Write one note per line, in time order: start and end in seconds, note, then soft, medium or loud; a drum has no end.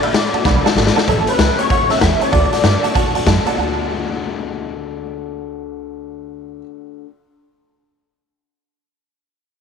0.02 0.13 D4 soft
0.02 0.14 F#4 soft
0.02 0.14 A4 medium
0.02 0.09 D5 medium
0.02 0.14 E5 medium
0.02 0.09 F#5 medium
0.02 0.10 B5 medium
0.02 ride medium
0.12 0.31 A2 loud
0.12 0.33 A3 medium
0.12 0.34 D4 medium
0.12 0.33 F#4 medium
0.12 0.31 A4 medium
0.12 0.25 D5 medium
0.12 0.96 D5 medium
0.12 0.26 F#5 medium
0.12 0.26 B5 medium
0.12 snare loud
0.12 ride medium
0.32 0.43 F#2 medium
0.32 0.44 D4 soft
0.32 0.45 F#4 medium
0.32 0.44 A4 medium
0.32 0.40 D5 medium
0.32 0.40 F#5 medium
0.32 0.41 A5 medium
0.32 ride medium
0.44 0.62 B1 medium
0.44 0.64 D3 medium
0.44 0.65 A3 medium
0.44 0.65 D4 medium
0.44 0.64 F#4 medium
0.44 0.63 A4 medium
0.44 0.56 D5 loud
0.44 0.57 F#5 medium
0.44 0.57 B5 loud
0.44 kick loud
0.44 snare medium
0.64 0.75 D4 medium
0.64 0.76 F#4 medium
0.64 0.76 A4 medium
0.64 0.71 D5 loud
0.64 0.72 F#5 medium
0.64 0.72 A5 loud
0.64 muted upright bass stroke medium
0.64 snare medium
0.75 0.93 G#1 medium
0.75 0.95 A3 medium
0.75 0.96 D4 medium
0.75 0.95 F#4 medium
0.75 0.93 A4 medium
0.75 0.88 D5 medium
0.75 0.88 F#5 medium
0.75 0.89 A5 medium
0.75 snare medium
0.87 snare loud
0.94 1.08 D4 medium
0.94 1.08 F#4 medium
0.94 1.07 A4 medium
0.94 1.02 D5 loud
0.94 1.03 F#5 medium
0.94 1.03 A5 loud
0.94 muted upright bass stroke medium
0.94 snare medium
1.06 1.22 A1 loud
1.06 1.27 A2 medium
1.06 1.27 E3 medium
1.06 1.27 G3 medium
1.06 1.28 C#4 medium
1.06 1.26 G4 medium
1.06 1.25 A4 medium
1.06 1.28 A4 medium
1.06 1.19 C#5 loud
1.06 1.20 E5 medium
1.06 1.20 A5 loud
1.06 kick medium
1.06 closed hi-hat medium
1.26 1.38 G3 soft
1.26 1.38 C#4 soft
1.26 1.39 G4 soft
1.26 1.38 A4 medium
1.26 1.60 B4 medium
1.26 1.34 C#5 medium
1.26 1.34 E5 medium
1.26 1.35 B5 medium
1.26 muted upright bass stroke medium
1.26 closed hi-hat medium
1.38 1.53 C#2 medium
1.38 1.58 A2 medium
1.38 1.58 E3 medium
1.38 1.59 G3 medium
1.38 1.59 C#4 medium
1.38 1.58 G4 medium
1.38 1.56 A4 medium
1.38 1.50 C#5 medium
1.38 1.51 E5 medium
1.38 1.51 B5 medium
1.38 snare loud
1.38 closed hi-hat medium
1.58 1.68 G3 soft
1.58 1.69 C#4 medium
1.58 1.70 G4 medium
1.58 1.70 A4 medium
1.58 1.65 C#5 medium
1.58 1.90 C#5 loud
1.58 1.65 E5 medium
1.58 1.66 G5 medium
1.58 closed hi-hat medium
1.69 1.84 A1 loud
1.69 1.89 G3 medium
1.69 1.90 C#4 medium
1.69 1.89 G4 medium
1.69 1.88 A4 medium
1.69 1.82 C#5 loud
1.69 1.82 E5 loud
1.69 1.82 F#5 loud
1.69 kick loud
1.69 closed hi-hat medium
1.89 1.98 E2 medium
1.89 2.01 G3 soft
1.89 2.01 C#4 medium
1.89 2.02 G4 medium
1.89 2.01 A4 medium
1.89 1.96 C#5 medium
1.89 1.97 E5 medium
1.89 1.98 E5 loud
1.89 1.97 A5 medium
1.89 snare soft
1.89 closed hi-hat medium
1.99 2.16 E2 medium
1.99 2.21 A2 medium
1.99 2.21 E3 medium
1.99 2.21 G3 medium
1.99 2.22 C#4 medium
1.99 2.13 C#5 medium
1.99 2.13 E5 medium
1.99 2.22 E5 loud
1.99 2.01 F#5 medium
1.99 2.13 A5 medium
1.99 kick medium
1.99 snare loud
1.99 closed hi-hat medium
2.03 2.20 G4 medium
2.03 2.19 A4 medium
2.20 2.32 G3 soft
2.20 2.33 C#4 medium
2.20 2.33 G4 medium
2.20 2.32 A4 medium
2.20 2.28 C#5 medium
2.20 2.89 D5 medium
2.20 2.28 E5 medium
2.20 2.28 A5 medium
2.20 muted upright bass stroke medium
2.20 closed hi-hat medium
2.32 2.47 D2 medium
2.32 2.52 D3 medium
2.32 2.52 A3 medium
2.32 2.53 D4 medium
2.32 2.53 F#4 medium
2.32 2.51 A4 medium
2.32 2.44 D5 loud
2.32 2.44 F#5 medium
2.32 2.44 A5 loud
2.32 kick loud
2.32 closed hi-hat medium
2.51 2.64 F#4 soft
2.51 2.64 A4 medium
2.51 2.59 D5 medium
2.51 2.59 F#5 medium
2.51 2.59 A5 medium
2.51 muted upright bass stroke medium
2.51 snare soft
2.51 closed hi-hat medium
2.55 2.63 D4 soft
2.63 2.78 G2 loud
2.63 2.83 D3 medium
2.63 2.84 A3 medium
2.63 2.84 D4 medium
2.63 2.83 F#4 medium
2.63 2.81 A4 medium
2.63 2.75 D5 medium
2.63 2.76 F#5 medium
2.63 2.76 A5 loud
2.63 snare loud
2.63 closed hi-hat medium
2.82 2.94 D4 medium
2.82 2.95 F#4 soft
2.82 2.95 A4 medium
2.82 2.90 D5 medium
2.82 2.90 F#5 medium
2.82 2.91 A5 loud
2.82 muted upright bass stroke medium
2.82 closed hi-hat medium
2.89 3.23 C#5 medium
2.94 3.09 B2 loud
2.94 3.14 A3 medium
2.94 3.15 D4 medium
2.94 3.14 F#4 medium
2.94 3.13 A4 medium
2.94 3.07 D5 loud
2.94 3.07 F#5 loud
2.94 3.07 A5 loud
2.94 kick loud
2.94 closed hi-hat medium
3.14 3.23 F#2 medium
3.14 3.26 D4 soft
3.14 3.26 F#4 medium
3.14 3.26 A4 medium
3.14 3.21 D5 medium
3.14 3.22 F#5 medium
3.14 3.22 A5 loud
3.14 closed hi-hat medium
3.25 3.40 F#2 medium
3.25 3.46 D3 medium
3.25 3.46 A3 medium
3.25 3.46 D4 medium
3.25 3.46 F#4 medium
3.25 3.44 A4 medium
3.25 3.38 D5 medium
3.25 3.38 F#5 medium
3.25 3.38 A5 loud
3.25 kick medium
3.25 snare loud
3.25 closed hi-hat medium
3.45 3.58 D4 soft
3.45 3.58 F#4 medium
3.45 3.57 A4 medium
3.45 3.53 D5 medium
3.45 3.53 F#5 medium
3.45 3.53 A5 loud
3.45 muted upright bass stroke medium
3.45 closed hi-hat medium
3.55 6.61 D2 medium
3.55 7.05 D3 medium
3.55 7.07 A3 medium
3.55 6.58 D5 medium
3.55 6.61 F#5 medium
3.59 7.09 D4 medium
3.59 7.11 F#4 medium
3.59 7.13 A4 medium
3.59 6.63 A5 medium